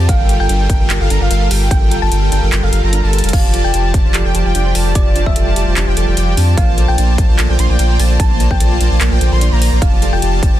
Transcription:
Already playing: F2
0.09 G1 G3 F4 A4 A#4 F5 G5, kick, closed hi-hat
0.20 A#4
0.29 G4, closed hi-hat
0.40 G1 G3 F4 G4 A4 A#4 G5
0.49 G1 G3 D4 F4 A4 A#4 G5, closed hi-hat
0.60 D5
0.70 G1 G3 F4 A4 A#4 G5, kick, closed hi-hat
0.80 G1 G3 F4 A4 A#4 G5
0.90 G1 G3 F4 G4 A4 A#4 G5, clap, closed hi-hat
1.01 G1 G3 F4 G4 A4 A#4 F5
1.10 G1 G3 D4 F4 A4 A#4 A#5, closed hi-hat
1.21 G1 G3 F4 A4 A#4 D5 F5
1.30 G1 G3 F4 A4 A#4 F5, closed hi-hat
1.41 A#4
1.51 G1 G3 F4 G4 A4 A#4 G5, open hi-hat
1.61 G4
1.71 G1 G3 D4 F4 A4 A#4 G5, kick, closed hi-hat
1.82 D5
1.91 A#4, closed hi-hat
2.02 G1 G3 F4 A4 A#4 G5 A5
2.11 G1 G3 F4 G4 A4 A#4 G5, closed hi-hat
2.22 G4
2.32 G1 G3 D4 F4 A4 A#4 G5, closed hi-hat
2.42 G1 G3 F4 A4 A#4 D5 G5
2.52 G1 G3 F4 A4 A#4 G5, clap, closed hi-hat
2.63 G1 G3 F4 A4 A#4 F5
2.72 G1 G3 F4 G4 A4 A#4 F5, closed hi-hat
2.83 G1 G3 F4 G4 A4 A#4 A#5
2.93 D4, closed hi-hat
3.03 G1 G3 F4 A4 A#4 D5 A5
3.13 A#4, closed hi-hat
3.18 closed hi-hat
3.24 F1 G3 F4 A4 A#4 A5, closed hi-hat
3.29 closed hi-hat
3.33 F1 D3 F3 G3 A3 D4 F4 G4 D5 F5 A5, kick, closed hi-hat, crash
3.44 C5
3.53 A4, closed hi-hat
3.64 F1 F3 F4 G4 A4 D5 G5 A5
3.74 F1 F3 F4 G4 D5 A5, closed hi-hat
3.94 F1 F3 D4 F4 G4 D5 A5, kick, closed hi-hat
4.05 F1 F3 F4 G4 C5 D5 A5
4.14 F1 F3 F4 G4 A4 D5 A5, clap, closed hi-hat
4.25 F1 F3 F4 G4 A4 D5 G5
4.35 F1 F3 F4 G4 D5 A5, closed hi-hat
4.45 F1 F3 F4 G4 D5 G5
4.55 F1 F3 D4 F4 G4 D5 G5, closed hi-hat
4.66 C5
4.75 F1 F3 F4 G4 A4 D5 A5, open hi-hat
4.86 A4
4.95 F1 F3 F4 G4 D5 A5, kick, closed hi-hat
5.06 G4
5.16 D4, closed hi-hat
5.26 F1 F3 F4 G4 C5 D5 E5 A5, kick
5.36 F1 F3 F4 G4 A4 D5 A5, closed hi-hat
5.47 A4
5.56 F1 F3 F4 G4 D5 A5, closed hi-hat
5.67 F1 F3 F4 G4 D5 A5
5.76 F1 F3 D4 F4 G4 D5 A5, clap, closed hi-hat
5.87 F1 F3 F4 G4 C5 D5 G5
5.97 F1 F3 F4 G4 A4 D5 A5, closed hi-hat
6.07 F1 F3 F4 G4 A4 D5 G5
6.17 F1 F3 F4 G4 D5 G5, closed hi-hat
6.28 G4
6.37 F2 F3 D4 F4 G4 D5 A5, open hi-hat
6.48 C5
6.57 A#1 A#3 F4 A#4 C5 D5 F5 A5, kick, closed hi-hat
6.68 A#4
6.78 A4, closed hi-hat
6.88 A#1 A#3 F4 A4 C5 D5 G5 A5
6.98 A#1 A#3 D4 F4 C5 D5 A5, closed hi-hat
7.09 D5
7.18 A#1 A#3 F4 A#4 C5 D5 A5, kick, closed hi-hat
7.29 A#1 A#3 F4 A#4 C5 D5 A5
7.38 A#1 A#3 F4 A4 C5 D5 A5, clap, closed hi-hat
7.49 A#1 A#3 F4 A4 C5 D5 G5
7.59 A#1 A#3 D4 F4 C5 D5 C6, closed hi-hat
7.69 A#1 A#3 F4 C5 D5 G5
7.79 A#1 A#3 F4 A#4 C5 D5 G5, closed hi-hat
7.90 A#4
7.99 A#1 A#3 F4 A4 C5 D5 A5, open hi-hat
8.10 A4
8.20 A#1 A#3 D4 F4 C5 D5 A5, kick, closed hi-hat
8.31 D5
8.40 A#4, closed hi-hat
8.51 A#1 A#3 F4 A#4 C5 D5 G5 A5, kick
8.60 A#1 A#3 F4 A4 C5 D5 A5, closed hi-hat
8.71 A4
8.80 A#1 A#3 D4 F4 C5 D5 A5, closed hi-hat
8.91 A#1 A#3 F4 C5 D5 A5
9.01 A#1 A#3 F4 A#4 C5 D5 A5, clap, closed hi-hat
9.11 A#1 A#3 F4 A#4 C5 D5 G5
9.21 A#1 A#3 F4 A4 C5 D5 G5, closed hi-hat
9.32 A#1 A#3 F4 A4 C5 D5 C6
9.41 D4, closed hi-hat
9.52 A#1 A#3 F4 C5 D5 A#5
9.62 A#4, open hi-hat
9.72 A#1 A#3 F4 A#4 C5 D5 A#5
9.82 F1 F3 G3 D4 F4 G4 D5 F5 A5, kick, closed hi-hat
9.93 C5
10.02 A4, closed hi-hat
10.13 F1 F3 F4 G4 A4 D5 G5 A5
10.22 F1 F3 F4 G4 D5 A5, closed hi-hat
10.33 G4
10.43 F1 F3 D4 F4 G4 D5 A5, kick, closed hi-hat
10.53 F1 F3 F4 G4 C5 D5 A5

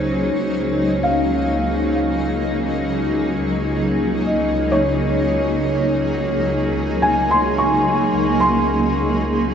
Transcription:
Already playing: C#2 C#3 F#3 A#3 C#4 D#4 G#4 C5 C#5
1.03 F5
4.26 D#5
4.72 C#5
7.02 G#5
7.31 C6
7.58 C#6
8.40 C6

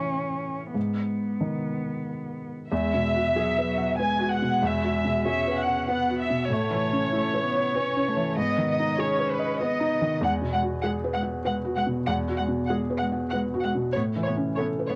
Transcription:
Already playing: A2 E3 C#4
0.74 G#2 B3
1.41 D#3
2.71 E2 G#3 E5
2.94 B2
3.15 F#4
3.35 F#3 G#4
3.58 B4
3.66 F#3
3.78 F#5
3.97 G#3 B4 G#5
4.19 F#4
4.30 F#5
4.42 B2
4.62 E2 E5
4.83 F#4
5.05 B2
5.25 C#4 G#4 E5
5.48 B4
5.55 F#5
5.67 F#5
5.88 B3 B4 F#5
6.09 F#4
6.20 E5
6.30 B2
6.50 A2 A3 C#5
6.71 E3
6.92 C#4
7.12 A3 E4
7.34 B4
7.45 B3
7.55 C#5
7.75 C#4 B4
7.96 C#4
8.08 A3
8.16 E3
8.37 G#2 B3 D#5
8.58 D#3
8.69 D#5
8.79 D#4
8.98 C#4 G#4 C#5
9.19 B4
9.31 B4
9.39 D#5
9.61 B3 B4 D#5
9.80 D#4
10.02 D#3
10.21 E2 G#3 F#5
10.42 B2
10.53 G#3 F#5
10.62 F#4
10.83 G#3 G#4 F#5
11.04 B4
11.14 G#3 F#5
11.23 F#5
11.45 G#3 B4 F#5
11.65 F#4
11.76 G#3 F#5
11.87 B2
12.07 E2 G#3 F#5
12.28 F#4
12.38 G#3 F#5
12.48 B2
12.68 G#3 G#4 F#5
12.90 B4
12.98 G#3 F#5
13.12 F#5
13.30 G#3 B4 F#5
13.54 F#4
13.62 G#3 F#5
13.75 B2
13.93 A2 B3 C#5
14.16 E3
14.24 B3 C#5
14.37 C#4
14.56 B3 A4 C#5
14.79 B4
14.88 B3 C#5

